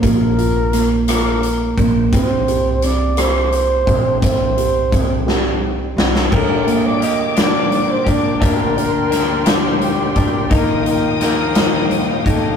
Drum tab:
CC |------------|------------|------------|x-----------|
HH |x-x-x-x-x-x-|x-x-x-x-x-x-|x-x-x-------|--x-x-x-x-x-|
SD |----r-r-----|----r-r-----|------o---oo|------o-----|
BD |o---------o-|o---------o-|o---o-------|o---------o-|

CC |------------|------------|
HH |x-x-x-x-x-x-|x-x-x-x-x-x-|
SD |----o-o-----|----o-o-----|
BD |o---------o-|o---------o-|